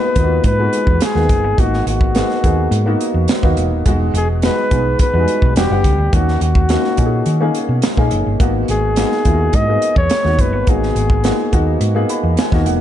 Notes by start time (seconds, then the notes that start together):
Already playing: A#3 B3 D#4 F#4 B4
0.16 D#2 A#3 B3 D#4 F4, kick, closed hi-hat
0.23 F#4
0.44 G#2 B4, kick, closed hi-hat
0.59 G#3 B3 D#4 F#4
0.73 closed hi-hat
0.87 E2, kick
1.01 G#4, snare, closed hi-hat
1.15 D#2 A#3 B3 D#4 G#4, snare
1.29 F#1, kick, closed hi-hat
1.44 G1
1.58 G#1 A#3 B3 D#4 F#4, kick, closed hi-hat
1.74 snare
1.86 G#1 F#4, closed hi-hat
2.01 kick
2.15 A#3 B3 D#4 G#4, snare, closed hi-hat
2.30 snare
2.44 D#2 A#3 B3 D#4 G#4, kick, closed hi-hat
2.71 G#2, closed hi-hat
2.86 A#3 B3 D#4 F#4
3.01 closed hi-hat
3.14 E2
3.28 snare, closed hi-hat
3.43 D#2 A#3 B3 D#4 F#4, kick
3.57 E1, closed hi-hat
3.71 D#1
3.86 E1 G#3 B3 D#4 F#4, kick, closed hi-hat
4.14 E1 G#4, closed hi-hat
4.42 G#3 B3 D#4 F#4 B4, snare, closed hi-hat
4.71 B1 G#3 B3 D#4 F#4, kick, closed hi-hat
4.99 B4, muted fingered electric bass stroke, kick, closed hi-hat
5.14 E2 G3 B3 D#4 F#4
5.20 G#3
5.28 closed hi-hat
5.42 B1, kick
5.56 E1 G3 B3 D4 F#4 G4, snare, closed hi-hat
5.70 F#1 G3 B3 D4 F#5
5.84 C#2, kick, closed hi-hat
5.98 D2
6.13 D#2 A#3 C#4 D#4 F#4, kick, closed hi-hat
6.28 snare
6.41 D#2 F#4, closed hi-hat
6.55 kick
6.69 A#3 C#4 D#4 F#4, snare, closed hi-hat
6.84 snare
6.97 A#2 A#3 C#4 D#4 F#4, kick, closed hi-hat
7.06 G#4
7.26 D#3, closed hi-hat
7.41 A#3 C#4 D#4 G#4
7.55 closed hi-hat
7.69 B2
7.82 snare, closed hi-hat
7.97 A#2 A#3 C#4 D#4 G#4, kick
8.11 F#1, closed hi-hat
8.26 G1
8.40 G#1 A#3 B3 D#4 F#4, kick, closed hi-hat
8.68 G#1 G#4, closed hi-hat
8.96 A#3 B3 D#4 F#4, snare, closed hi-hat
9.12 snare
9.25 D#2 A#3 B3 D#4 E4, kick, closed hi-hat
9.33 F#4
9.53 G#2 D#5, kick, closed hi-hat
9.68 A#3 B3 D#4 G#4
9.82 closed hi-hat
9.96 E2 C#5, kick
10.10 snare, closed hi-hat
10.25 D#2 A#3 B3 D#4 F#4, snare
10.39 F#1 B4, kick, closed hi-hat
10.53 G1
10.67 G#1 A#3 B3 D#4 F#4 G#4, kick, closed hi-hat
10.83 snare
10.95 G#1, closed hi-hat
11.10 kick
11.24 A#3 B3 D#4 F#4, snare, closed hi-hat
11.52 D#2 A#3 B3 D#4 F#4, kick, closed hi-hat
11.81 G#2, closed hi-hat
11.95 A#3 B3 D#4 G#4
12.09 B5, closed hi-hat
12.23 E2
12.37 G#5, snare, closed hi-hat
12.52 D#2 A#3 B3 D#4 F#4, kick, snare
12.66 E1 F#5, closed hi-hat